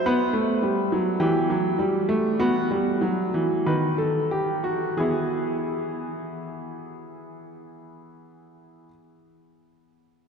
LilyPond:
<<
  \new Staff \with { instrumentName = "Grand piano" } { \time 4/4 \key b \phrygian \tempo 4 = 45 b'4 g'4 fis'4 b'16 a'16 g'16 fis'16 | <b e' gis'>1 | }
  \new Staff \with { instrumentName = "Grand piano" } { \clef bass \time 4/4 \key b \phrygian b16 a16 g16 fis16 e16 fis16 g16 a16 b16 g16 fis16 e16 dis4 | e1 | }
>>